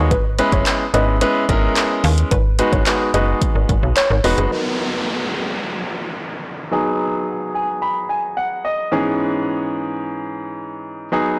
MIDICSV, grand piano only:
0, 0, Header, 1, 2, 480
1, 0, Start_track
1, 0, Tempo, 550459
1, 99, Time_signature, 4, 2, 24, 8
1, 9934, End_track
2, 0, Start_track
2, 0, Title_t, "Grand piano"
2, 0, Program_c, 0, 0
2, 0, Note_on_c, 0, 56, 87
2, 0, Note_on_c, 0, 59, 84
2, 0, Note_on_c, 0, 63, 83
2, 0, Note_on_c, 0, 66, 80
2, 0, Note_on_c, 0, 73, 93
2, 97, Note_off_c, 0, 56, 0
2, 98, Note_off_c, 0, 59, 0
2, 99, Note_off_c, 0, 63, 0
2, 99, Note_off_c, 0, 66, 0
2, 100, Note_off_c, 0, 73, 0
2, 336, Note_on_c, 0, 56, 93
2, 337, Note_on_c, 0, 59, 81
2, 338, Note_on_c, 0, 61, 80
2, 340, Note_on_c, 0, 64, 84
2, 340, Note_on_c, 0, 71, 102
2, 719, Note_off_c, 0, 56, 0
2, 720, Note_off_c, 0, 59, 0
2, 720, Note_off_c, 0, 61, 0
2, 721, Note_off_c, 0, 64, 0
2, 721, Note_off_c, 0, 71, 0
2, 817, Note_on_c, 0, 56, 80
2, 818, Note_on_c, 0, 59, 75
2, 819, Note_on_c, 0, 61, 75
2, 820, Note_on_c, 0, 64, 72
2, 821, Note_on_c, 0, 71, 85
2, 1009, Note_off_c, 0, 56, 0
2, 1009, Note_off_c, 0, 59, 0
2, 1010, Note_off_c, 0, 61, 0
2, 1010, Note_off_c, 0, 64, 0
2, 1011, Note_off_c, 0, 71, 0
2, 1056, Note_on_c, 0, 56, 92
2, 1057, Note_on_c, 0, 59, 83
2, 1058, Note_on_c, 0, 61, 85
2, 1059, Note_on_c, 0, 64, 88
2, 1060, Note_on_c, 0, 71, 104
2, 1248, Note_off_c, 0, 56, 0
2, 1249, Note_off_c, 0, 59, 0
2, 1249, Note_off_c, 0, 61, 0
2, 1250, Note_off_c, 0, 64, 0
2, 1250, Note_off_c, 0, 71, 0
2, 1297, Note_on_c, 0, 56, 97
2, 1298, Note_on_c, 0, 59, 89
2, 1300, Note_on_c, 0, 61, 85
2, 1301, Note_on_c, 0, 64, 85
2, 1302, Note_on_c, 0, 70, 105
2, 2018, Note_off_c, 0, 56, 0
2, 2019, Note_off_c, 0, 59, 0
2, 2019, Note_off_c, 0, 61, 0
2, 2020, Note_off_c, 0, 64, 0
2, 2020, Note_off_c, 0, 70, 0
2, 2256, Note_on_c, 0, 56, 86
2, 2257, Note_on_c, 0, 59, 78
2, 2259, Note_on_c, 0, 63, 80
2, 2259, Note_on_c, 0, 66, 79
2, 2261, Note_on_c, 0, 71, 93
2, 2448, Note_off_c, 0, 56, 0
2, 2449, Note_off_c, 0, 59, 0
2, 2450, Note_off_c, 0, 63, 0
2, 2450, Note_off_c, 0, 66, 0
2, 2451, Note_off_c, 0, 71, 0
2, 2497, Note_on_c, 0, 56, 76
2, 2498, Note_on_c, 0, 59, 69
2, 2500, Note_on_c, 0, 63, 69
2, 2501, Note_on_c, 0, 66, 67
2, 2501, Note_on_c, 0, 71, 81
2, 2689, Note_off_c, 0, 56, 0
2, 2689, Note_off_c, 0, 59, 0
2, 2690, Note_off_c, 0, 63, 0
2, 2691, Note_off_c, 0, 66, 0
2, 2691, Note_off_c, 0, 71, 0
2, 2737, Note_on_c, 0, 56, 78
2, 2738, Note_on_c, 0, 59, 72
2, 2740, Note_on_c, 0, 63, 72
2, 2741, Note_on_c, 0, 66, 72
2, 2742, Note_on_c, 0, 71, 88
2, 3502, Note_off_c, 0, 56, 0
2, 3502, Note_off_c, 0, 59, 0
2, 3503, Note_off_c, 0, 63, 0
2, 3503, Note_off_c, 0, 66, 0
2, 3504, Note_off_c, 0, 71, 0
2, 3697, Note_on_c, 0, 56, 90
2, 3697, Note_on_c, 0, 59, 80
2, 3698, Note_on_c, 0, 63, 83
2, 3699, Note_on_c, 0, 66, 80
2, 3701, Note_on_c, 0, 71, 94
2, 3923, Note_off_c, 0, 59, 0
2, 3926, Note_off_c, 0, 63, 0
2, 3933, Note_on_c, 0, 54, 70
2, 3936, Note_on_c, 0, 59, 65
2, 3938, Note_off_c, 0, 56, 0
2, 3939, Note_off_c, 0, 66, 0
2, 3939, Note_on_c, 0, 63, 66
2, 3940, Note_off_c, 0, 71, 0
2, 3942, Note_on_c, 0, 70, 81
2, 5821, Note_off_c, 0, 54, 0
2, 5823, Note_off_c, 0, 59, 0
2, 5824, Note_off_c, 0, 63, 0
2, 5825, Note_off_c, 0, 70, 0
2, 5854, Note_on_c, 0, 54, 74
2, 5857, Note_on_c, 0, 59, 66
2, 5860, Note_on_c, 0, 63, 65
2, 5863, Note_on_c, 0, 68, 82
2, 6579, Note_on_c, 0, 80, 67
2, 6802, Note_off_c, 0, 80, 0
2, 6819, Note_on_c, 0, 83, 71
2, 7042, Note_off_c, 0, 83, 0
2, 7057, Note_on_c, 0, 80, 66
2, 7281, Note_off_c, 0, 80, 0
2, 7298, Note_on_c, 0, 78, 66
2, 7522, Note_off_c, 0, 78, 0
2, 7539, Note_on_c, 0, 75, 68
2, 7742, Note_off_c, 0, 54, 0
2, 7743, Note_off_c, 0, 59, 0
2, 7745, Note_off_c, 0, 63, 0
2, 7746, Note_off_c, 0, 68, 0
2, 7762, Note_off_c, 0, 75, 0
2, 7774, Note_on_c, 0, 44, 77
2, 7776, Note_on_c, 0, 52, 67
2, 7779, Note_on_c, 0, 59, 69
2, 7781, Note_on_c, 0, 61, 71
2, 7783, Note_on_c, 0, 68, 85
2, 9662, Note_off_c, 0, 44, 0
2, 9663, Note_off_c, 0, 52, 0
2, 9664, Note_off_c, 0, 59, 0
2, 9665, Note_off_c, 0, 61, 0
2, 9666, Note_off_c, 0, 68, 0
2, 9695, Note_on_c, 0, 54, 75
2, 9697, Note_on_c, 0, 59, 67
2, 9700, Note_on_c, 0, 63, 70
2, 9703, Note_on_c, 0, 68, 83
2, 9934, Note_off_c, 0, 54, 0
2, 9934, Note_off_c, 0, 59, 0
2, 9934, Note_off_c, 0, 63, 0
2, 9934, Note_off_c, 0, 68, 0
2, 9934, End_track
0, 0, End_of_file